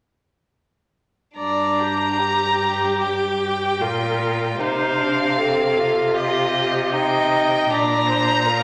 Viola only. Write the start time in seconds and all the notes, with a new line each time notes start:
1.38 D5
1.80 G4
3.81 A#4
4.61 C5
5.38 A4
6.15 G4
6.94 D#5
7.71 D5
8.08 C5
8.46 A#4